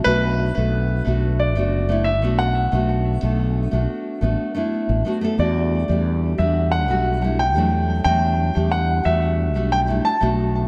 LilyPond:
<<
  \new Staff \with { instrumentName = "Grand piano" } { \time 4/4 \key e \minor \tempo 4 = 90 b'4. r8 d''4 e''8 fis''8~ | fis''4. r2 r8 | d''4. e''8 fis''4 g''4 | g''4 fis''8 e''4 g''8 a''8. r16 | }
  \new Staff \with { instrumentName = "Nylon-string guitar" } { \time 4/4 \key e \minor <a b d' fis'>8. <a b d' a'>8. <a b d' fis'>8. <a b d' fis'>8 <a b d' e'>16 r16 <a b d' fis'>8. | <a b d' fis'>8. <a b d' a'>8. <a b d' fis'>8. <a b d' fis'>8 <a b d' e'>8. <a b d' fis'>16 <a b d' a'>16 | <g a d' fis'>8. <g a d' g'>8. <g a d' fis'>8. <g a d' fis'>8 <g a d' e'>16 r16 <fis g a d'>8. | <fis g a d'>8. <g a d' g'>8. <g a d' fis'>8. <g a d' fis'>8 <g a d' e'>16 r16 <a b d' fis'>8. | }
  \new Staff \with { instrumentName = "Fretless electric bass" } { \clef bass \time 4/4 \key e \minor b,,8. b,,8. b,,8. fis,,4 b,,8. | b,,8. b,,8. b,,16 r8 a,,16 r8. a,,16 r8 | e,8. e,8. e,8. b,,4 e,8. | e,8. e,8. e,8. b,,8. r16 b,,8. | }
>>